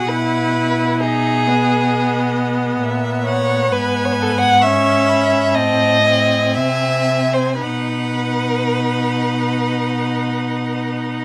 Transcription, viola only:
0.10 1.03 E4 soft
1.01 1.49 D#4 soft
1.47 3.71 B3 soft
3.71 4.65 B3 medium
4.63 5.57 C#4 medium
5.56 6.05 C4 soft
6.06 7.59 C4 soft
7.62 11.25 D#4 soft

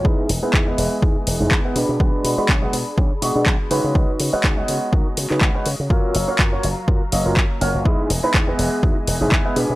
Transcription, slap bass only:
0.05 0.14 E2 loud
0.29 0.38 E1 medium
0.54 0.71 E2 medium
0.78 0.87 E1 medium
1.02 1.12 E2 medium
1.16 muted slap bass stroke soft
1.27 1.36 E1 medium
1.40 1.48 E1 medium
1.51 1.60 E2 loud
1.76 1.85 B2 medium
1.89 1.97 B2 medium
2.00 2.09 B1 medium
2.24 2.34 B2 medium
2.38 muted slap bass stroke soft
2.49 2.66 B1 medium
2.73 2.82 B2 medium
2.98 3.07 B1 medium
3.11 muted slap bass stroke soft
3.22 3.31 B2 medium
3.36 3.43 B2 medium
3.46 3.56 B1 loud
3.71 3.80 C#3 medium
3.84 3.92 C#3 medium
3.95 4.04 C#2 loud
4.20 4.29 C#3 medium
4.33 muted slap bass stroke soft
4.44 4.61 C#2 medium
4.69 4.78 C#3 medium
4.93 5.02 C#2 medium
5.17 5.26 C#3 medium
5.31 5.38 C#3 medium
5.42 5.51 C#2 loud
5.66 5.75 C#3 medium
5.80 5.87 C#3 medium
5.90 5.99 F#2 loud
6.15 6.24 F#1 medium
6.39 6.56 F#2 medium
6.64 6.73 F#1 medium
6.88 6.97 F#2 medium
7.02 muted slap bass stroke soft
7.12 7.21 F#1 medium
7.26 7.33 F#1 medium
7.61 7.70 F#1 medium
7.75 7.82 F#1 medium
7.86 7.95 E2 loud
8.10 8.19 E1 medium
8.34 8.52 E2 medium
8.59 8.68 E1 medium
8.83 8.92 E2 medium
9.07 9.17 E1 medium
9.21 9.28 E1 medium
9.32 9.41 E2 loud
9.56 9.65 B2 medium
9.70 9.75 B2 medium

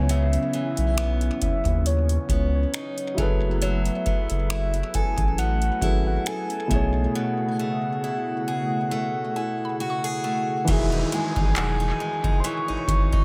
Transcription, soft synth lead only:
0.11 1.38 E5 loud
1.43 1.88 E5 loud
1.87 2.54 C#5 medium
2.55 3.15 C#5 medium
3.63 4.96 E5 loud
4.95 5.38 G#5 loud
5.38 6.03 F#5 loud
6.07 6.29 F#5 medium
6.27 7.15 G#5 loud
7.15 9.76 F#5 medium
9.81 10.72 F#5 loud
10.70 11.16 E5 loud
11.14 12.41 G#5 loud
12.40 12.48 C6 medium
12.46 13.25 C#6 loud

